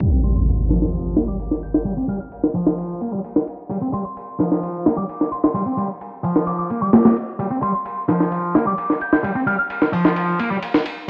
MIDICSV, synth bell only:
0, 0, Header, 1, 2, 480
1, 0, Start_track
1, 0, Key_signature, -2, "minor"
1, 0, Tempo, 461538
1, 11, Time_signature, 4, 2, 24, 8
1, 11543, End_track
2, 0, Start_track
2, 0, Title_t, "Synth bell"
2, 0, Program_c, 0, 98
2, 247, Note_on_c, 0, 84, 84
2, 327, Note_off_c, 0, 84, 0
2, 371, Note_on_c, 0, 84, 70
2, 448, Note_off_c, 0, 84, 0
2, 1332, Note_on_c, 0, 86, 80
2, 1667, Note_off_c, 0, 86, 0
2, 1693, Note_on_c, 0, 91, 81
2, 1770, Note_off_c, 0, 91, 0
2, 1814, Note_on_c, 0, 91, 72
2, 1889, Note_off_c, 0, 91, 0
2, 2171, Note_on_c, 0, 89, 82
2, 2248, Note_off_c, 0, 89, 0
2, 2289, Note_on_c, 0, 89, 71
2, 2367, Note_off_c, 0, 89, 0
2, 4091, Note_on_c, 0, 84, 86
2, 4169, Note_off_c, 0, 84, 0
2, 4209, Note_on_c, 0, 84, 70
2, 4287, Note_off_c, 0, 84, 0
2, 5169, Note_on_c, 0, 86, 82
2, 5506, Note_off_c, 0, 86, 0
2, 5529, Note_on_c, 0, 84, 80
2, 5608, Note_off_c, 0, 84, 0
2, 5650, Note_on_c, 0, 84, 71
2, 5727, Note_off_c, 0, 84, 0
2, 5768, Note_on_c, 0, 84, 88
2, 5968, Note_off_c, 0, 84, 0
2, 6728, Note_on_c, 0, 86, 78
2, 6807, Note_off_c, 0, 86, 0
2, 6851, Note_on_c, 0, 86, 73
2, 6928, Note_off_c, 0, 86, 0
2, 7088, Note_on_c, 0, 86, 81
2, 7449, Note_off_c, 0, 86, 0
2, 7929, Note_on_c, 0, 84, 83
2, 8008, Note_off_c, 0, 84, 0
2, 8055, Note_on_c, 0, 84, 72
2, 8130, Note_off_c, 0, 84, 0
2, 9016, Note_on_c, 0, 86, 82
2, 9349, Note_off_c, 0, 86, 0
2, 9375, Note_on_c, 0, 91, 78
2, 9450, Note_off_c, 0, 91, 0
2, 9494, Note_on_c, 0, 91, 71
2, 9569, Note_off_c, 0, 91, 0
2, 9848, Note_on_c, 0, 89, 85
2, 9927, Note_off_c, 0, 89, 0
2, 9971, Note_on_c, 0, 89, 75
2, 10048, Note_off_c, 0, 89, 0
2, 11543, End_track
0, 0, End_of_file